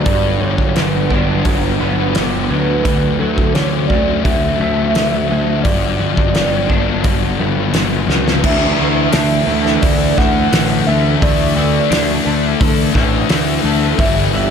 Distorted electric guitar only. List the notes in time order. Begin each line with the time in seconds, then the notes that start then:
0.06 G2
0.43 F#3
0.76 D4
1.12 B3
1.46 D3
1.81 F#3
2.16 B3
2.50 F#3
2.86 D3
3.21 F#3
3.56 C#4
3.91 A3
4.26 D3
4.61 F#3
4.96 A3
5.31 F#3
5.66 G2
6.01 F#3
6.36 D4
6.71 B3
7.05 D3
7.40 F#3
7.75 B3
8.10 F#3
8.45 D3 A3 D4
8.79 A3 D4
9.13 D3 A3 D4
10.18 A3 D4
10.52 D3 A3 D4
10.87 A3 D4
11.21 D3 A3 D4
11.56 A3 D4
11.90 D3 A3 D4
12.94 A3 D4
13.29 D3 A3 D4
13.64 A3 D4
13.98 G2 D3 G3
14.33 D3 G3